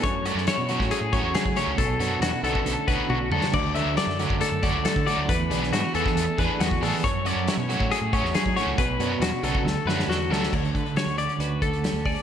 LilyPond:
<<
  \new Staff \with { instrumentName = "Clean electric guitar" } { \time 4/4 \key d \lydian \tempo 4 = 137 cis''8 d''8 cis''4 gis'8 cis''8 gis'8 cis''8 | a'4 fis'8 a'4 b'8 fis'8 a'8 | d''8 e''8 d''4 a'8 d''8 a'8 d''8 | b'4 fis'8 a'4 b'8 fis'8 a'8 |
cis''8 d''8 cis''4 gis'8 cis''8 gis'8 cis''8 | b'4 fis'8 a'4 b'8 fis'8 a'8 | cis''8 b'8 cis''8 d''8 b'8 a'4 d''8 | }
  \new Staff \with { instrumentName = "Overdriven electric guitar" } { \time 4/4 \key d \lydian r8 <fis a cis' fis'>8 r8 <fis a cis' fis'>8 r8 <fis a cis' fis'>8 r8 <fis a cis' fis'>8 | r8 <fis b d' fis'>8 r8 <fis b d' fis'>8 r8 <fis b d' fis'>8 r8 <fis b d' fis'>8 | r8 <fis a d' fis'>8 r8 <fis a d' fis'>8 r8 <fis a d' fis'>8 r8 <fis a d' fis'>8 | r8 <e b d' gis'>8 r8 <e b d' gis'>8 r8 <e b d' gis'>8 r8 <e b d' gis'>8 |
r8 <fis a cis' fis'>8 r8 <fis a cis' fis'>8 r8 <fis a cis' fis'>8 r8 <fis a cis' fis'>8 | r8 <fis b d' fis'>8 r8 <fis b d' fis'>8 r8 <fis a d' fis'>8 r8 <fis a d' fis'>8 | r1 | }
  \new Staff \with { instrumentName = "Clean electric guitar" } { \time 4/4 \key d \lydian << { r8 cis'8 e'8 cis'8 a8 cis'8 a8 cis'8 | r8 cis'8 e'8 cis'8 a8 cis'4. | r8 cis'8 a'8 cis'8 a8 cis'8 a8 cis'8 | r8 b8 d'16 e'16 b8 a8 b4. |
r8 cis'8 e'8 cis'8 a8 cis'4. | r8 cis'4. r8 cis'8 a'8 cis'8 | r8 a8 fis'8 cis'8 fis'8 a8 cis'8 gis'8 | } \\ { fis,4. fis4. cis4 | b,4. d4. b,8 cis8 | d,4. d4. a,4 | e,4. e4. d,8 e,8 |
fis,4. fis4. gis,8 a,8 | b,4 b,8 cis8 d,4. d8 | d,1 | } >> }
  \new Staff \with { instrumentName = "Fingered electric bass" } { \clef bass \time 4/4 \key d \lydian fis,8. fis,16 r16 b,8 a,16 r16 a,8 e,16 r16 fis16 r16 cis,16 | b,,8 fis,8 e,16 r16 b,,16 r16 b,,16 r16 b,,16 r16 b,,8 d,16 r16 | d,8. d,16 r16 fis,8 fis,16 r16 fis,8 cis,16 r16 d16 r16 d,16 | e,8 b,,8 gis,16 r16 e,16 r16 e,16 r16 e,16 r16 e,8 a,16 r16 |
fis,8. fis,16 r16 b,8 a,16 r16 a,8 e,16 r16 fis16 r16 cis,16 | b,,8 fis,8 e,16 r16 b,,16 r16 d,16 r16 fis,8 e,8 d,8 | d,8 d16 r16 d16 d,8 r16 d,4~ d,16 d,8 r16 | }
  \new DrumStaff \with { instrumentName = "Drums" } \drummode { \time 4/4 <hh bd>8 hh16 sn16 <hh sn>8 hh16 <bd sn>16 hh8 <hh bd>8 <hh sn>16 bd16 <hh sn>8 | <hh bd>8 hh8 <hh sn>8 hh16 bd16 hh8 <hh bd>8 tommh8 toml16 sn16 | <cymc bd>8 hh8 <hh sn>16 sn16 hh16 bd16 hh8 <hh bd>8 <hh sn>16 bd16 hh8 | <hh bd>8 hh16 sn16 <hh sn>8 hh16 <bd sn>16 hh8 <hh bd>8 <hh sn>16 bd16 <hho sn>8 |
<hh bd>8 hh8 <hh sn>8 hh16 bd16 hh8 <hh bd>16 sn16 <hh sn>16 bd16 <hh sn>8 | <hh bd>8 hh8 <hh sn>8 hh16 bd16 sn8 sn16 sn16 sn8 sn16 sn16 | <cymc bd>16 hh16 <hh bd>16 hh16 <hh sn>16 hh16 hh16 hh16 hh8 <hh bd>16 hh16 <hh sn>16 hh16 <hho bd>16 hh16 | }
>>